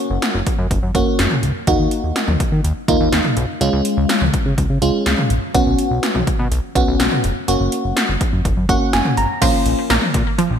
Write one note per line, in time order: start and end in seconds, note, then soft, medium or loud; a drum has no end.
0.00 0.38 A#3 medium
0.00 0.38 C#4 medium
0.00 0.38 F#4 medium
0.10 0.19 F#1 loud
0.22 snare loud
0.22 closed hi-hat medium
0.34 0.43 F#1 medium
0.47 kick medium
0.47 closed hi-hat medium
0.59 0.67 F#2 medium
0.71 0.80 F#1 loud
0.71 kick medium
0.71 closed hi-hat medium
0.83 0.92 F#2 loud
0.95 1.04 F#1 medium
0.95 1.43 A#3 medium
0.95 1.43 C#4 medium
0.95 1.43 F#4 medium
0.95 kick medium
0.95 closed hi-hat medium
1.19 1.28 F#1 loud
1.19 snare loud
1.19 closed hi-hat medium
1.31 mid tom medium
1.43 1.52 C#2 medium
1.43 closed hi-hat medium
1.67 1.76 D#2 loud
1.67 2.31 A#3 medium
1.67 2.31 D#4 medium
1.67 2.31 F#4 medium
1.67 kick loud
1.67 closed hi-hat medium
1.79 1.88 D#2 medium
1.91 closed hi-hat medium
2.04 2.12 D#2 loud
2.16 snare loud
2.16 closed hi-hat medium
2.28 2.37 D#2 medium
2.28 mid tom medium
2.40 kick medium
2.40 closed hi-hat medium
2.52 2.61 D#3 medium
2.64 2.73 D#2 loud
2.64 closed hi-hat medium
2.88 2.97 D#2 loud
2.88 3.36 A#3 medium
2.88 3.36 D#4 medium
2.88 3.36 F4 medium
2.88 kick medium
2.88 closed hi-hat medium
3.00 3.09 D#2 medium
3.12 3.21 D#2 loud
3.12 snare loud
3.12 closed hi-hat medium
3.25 mid tom medium
3.37 3.46 B1 medium
3.37 closed hi-hat medium
3.61 3.70 C#2 loud
3.61 4.25 G#3 medium
3.61 4.25 C#4 medium
3.61 4.25 F4 medium
3.61 closed hi-hat medium
3.73 3.82 C#2 loud
3.85 closed hi-hat medium
3.97 4.06 C#2 loud
4.09 snare loud
4.09 closed hi-hat medium
4.21 4.30 C#2 medium
4.21 mid tom medium
4.34 kick medium
4.34 closed hi-hat medium
4.46 4.54 C#3 loud
4.58 4.67 C#2 loud
4.58 kick medium
4.58 closed hi-hat medium
4.70 4.79 C#3 medium
4.82 4.91 C#2 loud
4.82 5.30 G#3 medium
4.82 5.30 C#4 medium
4.82 5.30 F4 medium
4.82 closed hi-hat medium
5.06 5.15 C#2 medium
5.06 snare loud
5.06 closed hi-hat medium
5.18 mid tom medium
5.30 5.39 A#1 medium
5.30 closed hi-hat medium
5.54 5.63 B1 loud
5.54 6.18 B3 medium
5.54 6.18 C#4 medium
5.54 6.18 F#4 medium
5.54 kick loud
5.54 closed hi-hat medium
5.67 5.75 B1 loud
5.79 closed hi-hat medium
5.91 6.00 B1 loud
6.03 snare loud
6.03 closed hi-hat medium
6.15 6.24 B1 loud
6.15 mid tom medium
6.27 kick medium
6.27 closed hi-hat medium
6.39 6.48 B2 medium
6.51 6.60 B1 loud
6.51 closed hi-hat medium
6.75 6.84 B1 medium
6.75 7.23 B3 medium
6.75 7.23 C#4 medium
6.75 7.23 F#4 medium
6.75 kick medium
6.75 closed hi-hat medium
6.88 6.96 B1 medium
7.00 7.09 B1 loud
7.00 snare loud
7.00 closed hi-hat medium
7.12 mid tom medium
7.24 7.33 F1 medium
7.24 closed hi-hat medium
7.48 7.57 F#1 loud
7.48 8.12 A#3 medium
7.48 8.12 C#4 medium
7.48 8.12 F#4 medium
7.48 closed hi-hat medium
7.60 7.69 F#1 loud
7.72 closed hi-hat medium
7.84 7.93 F#1 loud
7.97 snare loud
7.97 closed hi-hat medium
8.09 8.17 F#1 medium
8.21 kick loud
8.21 closed hi-hat medium
8.33 8.42 F#2 medium
8.45 8.54 F#1 loud
8.45 kick medium
8.45 closed hi-hat medium
8.57 8.66 F#2 loud
8.69 8.78 F#1 loud
8.69 9.17 A#3 medium
8.69 9.17 C#4 medium
8.69 9.17 F#4 medium
8.69 8.92 F#5 medium
8.69 kick medium
8.69 closed hi-hat medium
8.93 9.02 F#1 medium
8.93 9.16 G#5 medium
8.93 snare loud
8.93 closed hi-hat medium
9.05 mid tom medium
9.17 9.26 G#1 medium
9.17 9.40 A#5 medium
9.17 closed hi-hat medium
9.42 9.51 A#1 loud
9.42 9.57 F3 medium
9.42 10.05 A#3 medium
9.42 10.05 C#4 medium
9.42 10.05 F4 medium
9.42 kick loud
9.42 closed hi-hat medium
9.42 crash medium
9.66 9.75 A#1 medium
9.66 closed hi-hat medium
9.90 9.99 A#1 loud
9.90 10.05 A#3 medium
9.90 snare loud
9.90 closed hi-hat medium
10.02 mid tom medium
10.14 10.23 A#2 loud
10.14 kick loud
10.14 closed hi-hat medium
10.38 10.53 F3 medium
10.38 closed hi-hat medium
10.51 10.59 A#1 medium